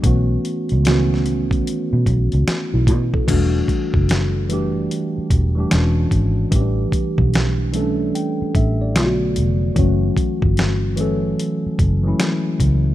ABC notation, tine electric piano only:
X:1
M:4/4
L:1/16
Q:"Swing 16ths" 1/4=74
K:Edor
V:1 name="Tine electric piano"
z12 z E F A- | A z12 z3 | z8 g2 e d2 z3 | z16 |]
V:2 name="Tine electric piano"
[E,A,B,CF]3 z [^D,E,A,B,CF]6- [D,E,A,B,CF] z4 z | [E,F,G,A,DF]4- [E,F,G,A,DF] z [E,G,A,DG]4 z [E,G,A,DG] [E,^G,CDF]3 z | [E,G,A,CDG]4- [E,G,A,CDG] z [E,G,A,CDA]4 z2 [D,F,A,B,=F^F]3 z | [E,F,G,A,CF]4- [E,F,G,A,CF] z [E,F,A,CA]4 z [E,F,^G,A,CE]4 z |]